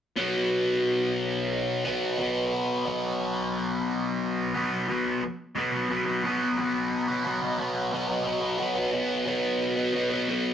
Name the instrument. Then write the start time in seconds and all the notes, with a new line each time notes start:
distorted electric guitar
0.16 B2 F#3 B3
1.85 B2 F#3 B3
2.18 B2 F#3 B3
2.85 B2 F#3 B3
4.54 B2 F#3 B3
4.88 B2 F#3 B3
5.55 B2 F#3 B3
5.72 F#3 B3
5.89 B2 F#3 B3
6.06 F#3 B3
6.23 B2 F#3 B3
6.58 B2 F#3 B3
7.08 F#3 B3
7.25 B2 F#3 B3
7.42 F#3 B3
7.58 B2 F#3 B3
7.92 B2 F#3 B3
8.07 F#3 B3
8.24 B2 F#3 B3
8.41 F#3 B3
8.58 B2 F#3 B3
8.75 F#3 B3
8.92 B2 F#3 B3
9.26 B2 F#3 B3
9.76 F#3 B3
9.93 B2 F#3 B3
10.10 F#3 B3
10.28 B2 F#3 B3